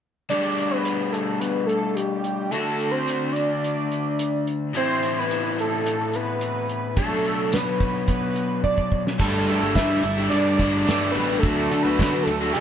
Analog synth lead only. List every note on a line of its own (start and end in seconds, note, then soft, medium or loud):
0.30 0.72 D5 loud
0.71 1.14 B4 medium
1.12 1.41 A4 medium
1.40 1.66 B4 medium
1.66 1.97 A4 medium
1.96 2.52 G4 medium
2.51 2.93 A4 loud
2.91 3.29 C5 medium
3.29 3.34 C5 medium
3.29 4.45 D5 medium
4.77 5.20 C5 loud
5.19 5.59 B4 medium
5.60 6.17 A4 medium
6.15 6.97 B4 medium
6.97 7.55 A4 loud
7.54 8.08 B4 medium
8.08 8.61 B4 loud
8.64 9.03 D5 medium
9.20 9.72 A4 loud
9.75 10.28 E5 loud
10.30 10.83 D5 loud
10.84 11.11 D5 medium
11.12 11.38 B4 medium
11.39 11.84 A4 loud
11.82 12.24 B4 loud
12.23 12.52 A4 medium
12.53 12.60 A4 medium